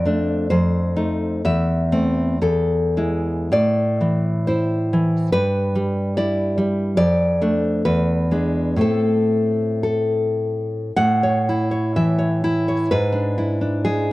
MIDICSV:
0, 0, Header, 1, 2, 480
1, 0, Start_track
1, 0, Key_signature, 0, "minor"
1, 0, Tempo, 888889
1, 273, Tempo, 956938
1, 746, Time_signature, 2, 2, 24, 8
1, 1233, Tempo, 1111111
1, 1713, Tempo, 949367
1, 2193, Tempo, 837989
1, 3633, Tempo, 864553
1, 4113, Tempo, 940439
1, 4593, Tempo, 1027397
1, 5073, Tempo, 1132075
1, 5553, Tempo, 1003344
1, 5554, Key_signature, 3, "major"
1, 6033, Tempo, 947867
1, 7128, End_track
2, 0, Start_track
2, 0, Title_t, "Nylon-string guitar"
2, 0, Program_c, 0, 24
2, 0, Note_on_c, 0, 41, 74
2, 0, Note_on_c, 0, 74, 92
2, 29, Note_on_c, 0, 57, 47
2, 34, Note_on_c, 0, 62, 49
2, 249, Note_off_c, 0, 57, 0
2, 252, Note_off_c, 0, 62, 0
2, 255, Note_off_c, 0, 74, 0
2, 260, Note_off_c, 0, 41, 0
2, 270, Note_on_c, 0, 72, 67
2, 275, Note_on_c, 0, 41, 53
2, 503, Note_on_c, 0, 57, 48
2, 504, Note_on_c, 0, 63, 46
2, 725, Note_off_c, 0, 57, 0
2, 725, Note_off_c, 0, 63, 0
2, 726, Note_off_c, 0, 72, 0
2, 733, Note_off_c, 0, 41, 0
2, 745, Note_on_c, 0, 40, 63
2, 748, Note_on_c, 0, 76, 81
2, 983, Note_on_c, 0, 57, 40
2, 984, Note_on_c, 0, 60, 45
2, 1210, Note_off_c, 0, 60, 0
2, 1211, Note_off_c, 0, 57, 0
2, 1214, Note_off_c, 0, 76, 0
2, 1218, Note_off_c, 0, 40, 0
2, 1231, Note_on_c, 0, 40, 49
2, 1233, Note_on_c, 0, 69, 63
2, 1471, Note_on_c, 0, 56, 38
2, 1472, Note_on_c, 0, 64, 44
2, 1695, Note_off_c, 0, 69, 0
2, 1696, Note_off_c, 0, 56, 0
2, 1696, Note_off_c, 0, 64, 0
2, 1698, Note_off_c, 0, 40, 0
2, 1707, Note_on_c, 0, 45, 61
2, 1711, Note_on_c, 0, 74, 77
2, 1954, Note_on_c, 0, 52, 42
2, 2172, Note_off_c, 0, 74, 0
2, 2188, Note_on_c, 0, 72, 60
2, 2193, Note_on_c, 0, 64, 40
2, 2444, Note_off_c, 0, 52, 0
2, 2451, Note_on_c, 0, 52, 47
2, 2660, Note_off_c, 0, 45, 0
2, 2664, Note_off_c, 0, 72, 0
2, 2674, Note_off_c, 0, 64, 0
2, 2676, Note_on_c, 0, 71, 89
2, 2678, Note_off_c, 0, 52, 0
2, 2680, Note_on_c, 0, 43, 73
2, 2923, Note_on_c, 0, 55, 56
2, 3139, Note_off_c, 0, 71, 0
2, 3161, Note_on_c, 0, 74, 75
2, 3164, Note_on_c, 0, 64, 59
2, 3387, Note_off_c, 0, 55, 0
2, 3388, Note_off_c, 0, 74, 0
2, 3394, Note_on_c, 0, 55, 57
2, 3607, Note_off_c, 0, 43, 0
2, 3619, Note_on_c, 0, 41, 71
2, 3621, Note_on_c, 0, 74, 98
2, 3631, Note_off_c, 0, 55, 0
2, 3633, Note_off_c, 0, 64, 0
2, 3867, Note_on_c, 0, 57, 46
2, 3869, Note_on_c, 0, 62, 49
2, 4087, Note_off_c, 0, 74, 0
2, 4091, Note_off_c, 0, 57, 0
2, 4092, Note_off_c, 0, 62, 0
2, 4093, Note_off_c, 0, 41, 0
2, 4109, Note_on_c, 0, 40, 67
2, 4109, Note_on_c, 0, 71, 74
2, 4345, Note_on_c, 0, 56, 40
2, 4349, Note_on_c, 0, 62, 51
2, 4572, Note_off_c, 0, 71, 0
2, 4573, Note_off_c, 0, 56, 0
2, 4575, Note_off_c, 0, 62, 0
2, 4575, Note_on_c, 0, 45, 49
2, 4577, Note_off_c, 0, 40, 0
2, 4580, Note_on_c, 0, 57, 36
2, 4586, Note_on_c, 0, 60, 41
2, 4598, Note_on_c, 0, 69, 60
2, 5057, Note_off_c, 0, 69, 0
2, 5075, Note_on_c, 0, 69, 55
2, 5529, Note_off_c, 0, 45, 0
2, 5531, Note_off_c, 0, 57, 0
2, 5533, Note_off_c, 0, 60, 0
2, 5537, Note_off_c, 0, 69, 0
2, 5556, Note_on_c, 0, 78, 90
2, 5558, Note_on_c, 0, 45, 71
2, 5684, Note_on_c, 0, 73, 50
2, 5807, Note_on_c, 0, 64, 45
2, 5907, Note_off_c, 0, 73, 0
2, 5913, Note_on_c, 0, 73, 46
2, 6016, Note_off_c, 0, 78, 0
2, 6033, Note_on_c, 0, 52, 42
2, 6033, Note_on_c, 0, 76, 64
2, 6140, Note_off_c, 0, 73, 0
2, 6146, Note_on_c, 0, 73, 47
2, 6269, Note_off_c, 0, 64, 0
2, 6275, Note_on_c, 0, 64, 56
2, 6392, Note_off_c, 0, 73, 0
2, 6398, Note_on_c, 0, 73, 49
2, 6499, Note_off_c, 0, 76, 0
2, 6502, Note_off_c, 0, 45, 0
2, 6513, Note_on_c, 0, 71, 86
2, 6516, Note_off_c, 0, 52, 0
2, 6518, Note_off_c, 0, 64, 0
2, 6518, Note_on_c, 0, 44, 70
2, 6519, Note_off_c, 0, 73, 0
2, 6622, Note_on_c, 0, 62, 47
2, 6750, Note_on_c, 0, 64, 46
2, 6863, Note_off_c, 0, 62, 0
2, 6869, Note_on_c, 0, 62, 42
2, 6972, Note_off_c, 0, 71, 0
2, 6987, Note_on_c, 0, 68, 63
2, 6990, Note_on_c, 0, 56, 48
2, 7115, Note_off_c, 0, 62, 0
2, 7128, Note_off_c, 0, 44, 0
2, 7128, Note_off_c, 0, 56, 0
2, 7128, Note_off_c, 0, 64, 0
2, 7128, Note_off_c, 0, 68, 0
2, 7128, End_track
0, 0, End_of_file